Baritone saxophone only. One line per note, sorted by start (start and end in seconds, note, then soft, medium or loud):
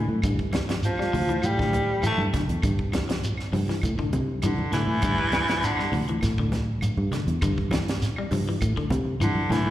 0.85 1.47 F3 medium
1.46 2.05 G3 medium
2.06 2.23 A3 medium
4.45 4.72 D3 medium
4.73 5.66 E3 loud
5.64 5.94 D3 medium
9.23 9.53 D3 medium
9.51 9.70 E3 loud